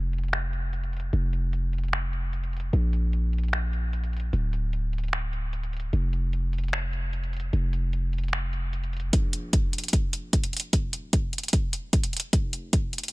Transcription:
Already playing: F1
0.13 closed hi-hat
0.18 closed hi-hat
0.24 closed hi-hat
0.28 closed hi-hat
0.33 finger snap, closed hi-hat
0.53 closed hi-hat
0.73 closed hi-hat
0.84 closed hi-hat
0.93 closed hi-hat
0.97 closed hi-hat
1.00 closed hi-hat
1.13 F1, closed hi-hat
1.33 closed hi-hat
1.53 closed hi-hat
1.73 closed hi-hat
1.78 closed hi-hat
1.84 closed hi-hat
1.88 closed hi-hat
1.93 finger snap, closed hi-hat
2.13 closed hi-hat
2.33 closed hi-hat
2.44 closed hi-hat
2.53 closed hi-hat
2.57 closed hi-hat
2.60 closed hi-hat
2.73 A#1, closed hi-hat
2.93 closed hi-hat
3.13 closed hi-hat
3.33 closed hi-hat
3.38 closed hi-hat
3.44 closed hi-hat
3.48 closed hi-hat
3.53 finger snap, closed hi-hat
3.73 closed hi-hat
3.93 closed hi-hat
4.04 closed hi-hat
4.13 closed hi-hat
4.17 closed hi-hat
4.20 closed hi-hat
4.33 D1, closed hi-hat
4.53 closed hi-hat
4.73 closed hi-hat
4.93 closed hi-hat
4.98 closed hi-hat
5.04 closed hi-hat
5.08 closed hi-hat
5.13 finger snap, closed hi-hat
5.33 closed hi-hat
5.53 closed hi-hat
5.63 closed hi-hat
5.73 closed hi-hat
5.77 closed hi-hat
5.80 closed hi-hat
5.93 F1, closed hi-hat
6.13 closed hi-hat
6.33 closed hi-hat
6.53 closed hi-hat
6.58 closed hi-hat
6.64 closed hi-hat
6.68 closed hi-hat
6.73 finger snap, closed hi-hat
6.93 closed hi-hat
7.13 closed hi-hat
7.24 closed hi-hat
7.33 closed hi-hat
7.37 closed hi-hat
7.40 closed hi-hat
7.53 F1, closed hi-hat
7.73 closed hi-hat
7.93 closed hi-hat
8.13 closed hi-hat
8.18 closed hi-hat
8.24 closed hi-hat
8.28 closed hi-hat
8.33 finger snap, closed hi-hat
8.53 closed hi-hat
8.73 closed hi-hat
8.84 closed hi-hat
8.93 closed hi-hat
8.97 closed hi-hat
9.00 closed hi-hat
9.13 A#1, kick, closed hi-hat
9.33 closed hi-hat
9.53 kick, closed hi-hat
9.73 closed hi-hat
9.78 closed hi-hat
9.84 closed hi-hat
9.88 closed hi-hat
9.93 kick, closed hi-hat
10.13 closed hi-hat
10.33 kick, closed hi-hat
10.44 closed hi-hat
10.53 closed hi-hat
10.57 closed hi-hat
10.60 closed hi-hat
10.73 D1, kick, closed hi-hat
10.93 closed hi-hat
11.13 kick, closed hi-hat
11.33 closed hi-hat
11.38 closed hi-hat
11.43 closed hi-hat
11.48 closed hi-hat
11.53 kick, closed hi-hat
11.73 closed hi-hat
11.93 kick, closed hi-hat
12.04 closed hi-hat
12.13 closed hi-hat
12.17 closed hi-hat
12.20 closed hi-hat
12.33 F1, kick, closed hi-hat
12.53 closed hi-hat
12.73 kick, closed hi-hat
12.93 closed hi-hat
12.98 closed hi-hat
13.03 closed hi-hat
13.08 closed hi-hat

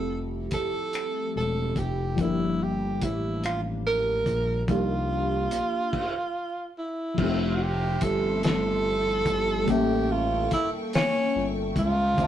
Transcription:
Already playing: F1 F3 A3 C4 E4 G4 A4
0.51 E1 A4, kick, closed hi-hat
0.93 finger snap, closed hi-hat
1.36 E1 A4
1.76 F1 G4, kick, closed hi-hat
2.15 G1 F3 G3, kick, closed hi-hat
2.20 A#3 D4 E4
2.24 G4
2.63 G4
3.01 A1 E4, kick, closed hi-hat
3.44 F4, finger snap, closed hi-hat
3.87 A#4
4.26 A#1, kick, closed hi-hat
4.67 C2 F3 A#3 D4 D#4 F4, kick, closed hi-hat
4.71 G4
5.51 A#1, closed hi-hat
5.93 kick, crash
6.78 E4
7.14 F3 G3 E5 A5 C6, kick, crash
7.19 F1 C4 E4
7.23 A3 G4
7.55 F#4
7.62 G4
8.01 G1 A4, kick, closed hi-hat
8.43 A4, snare, closed hi-hat
9.26 G1, kick, closed hi-hat
9.64 G3 A#3 G5 C#6, kick, closed hi-hat
9.68 A1 C#4 G4 E5
9.74 A4
10.12 F4
10.51 G1 E4, kick, closed hi-hat
10.93 C#4, snare, closed hi-hat
11.36 G1
11.76 C#2 F4, kick, closed hi-hat
12.14 D3 C4
12.18 D2 D4 C5 D5 E5 D6, kick, closed hi-hat
12.24 A5

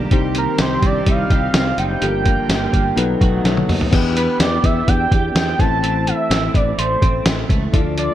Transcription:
Already playing: A#3 D4 G4
0.10 C2 D#3 G3 C4 D#4 G4 C5, kick, closed hi-hat
0.35 C4 A#4, closed hi-hat
0.58 C2 G4 C5, snare, closed hi-hat, tambourine
0.82 C2 C4 D5, kick, closed hi-hat
1.06 C2 D#4 F5, kick, closed hi-hat
1.30 C2 G4, kick, closed hi-hat
1.54 C2 C4, snare, closed hi-hat, tambourine
1.78 F#1 D#4 G5, closed hi-hat
2.00 G1 D3 F3 A#3 D4 F4 G4 A4, closed hi-hat
2.09 A#4
2.25 A#3, kick, closed hi-hat
2.49 G1 G4, snare, closed hi-hat, tambourine
2.73 G1 A#3, kick, closed hi-hat
2.96 B1 D#3 F#3 A3 B3 D#4 A4 B4, closed hi-hat
3.21 B1 F#4, kick, closed hi-hat
3.44 B1 A3 C#5, snare, closed hi-hat
3.57 high tom
3.68 D#2 D#4, mid tom, open hi-hat
3.81 floor tom
3.91 E2 E3 B3 D4 E4 G4 B4, kick, closed hi-hat, crash
4.16 B3 B4, closed hi-hat
4.40 E2 G4 D5, snare, closed hi-hat, tambourine
4.64 E2 B3 E5, kick, closed hi-hat
4.88 E2 D4 G5, kick, closed hi-hat
5.11 E2 G4, kick, closed hi-hat
5.35 E2 B3 G5, snare, closed hi-hat, tambourine
5.58 A1 E3 A3 C4 E4 A4 C5 A5, kick, closed hi-hat
5.83 E3 C4, closed hi-hat
6.06 E3 E5, closed hi-hat
6.30 A1 C4, snare, closed hi-hat, tambourine
6.54 A1 E3 D5, kick, closed hi-hat
6.78 A1 A3 C5, closed hi-hat
7.02 A1 C4, kick, closed hi-hat
7.26 A1 E3, snare, closed hi-hat, tambourine
7.49 C#2 A3, kick, closed hi-hat
7.72 D2 F3 A3 D4 E4 A4 D5, kick, closed hi-hat
7.79 F4
7.98 F3 D5, closed hi-hat

